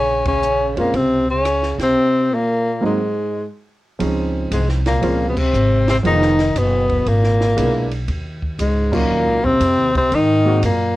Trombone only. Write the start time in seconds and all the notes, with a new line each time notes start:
Already playing: C#3
0.26 C#3
0.78 A#2
0.95 C3
1.29 C#3
1.80 C3
2.31 A#2
2.83 G#2
4.51 G#2
4.86 A#2
5.27 B2
5.37 C3
5.88 C3
6.06 D#3
6.56 B2
7.08 A#2
8.59 G#2
8.93 A#2
9.44 C3
9.95 C3
10.12 D#3
10.63 A#2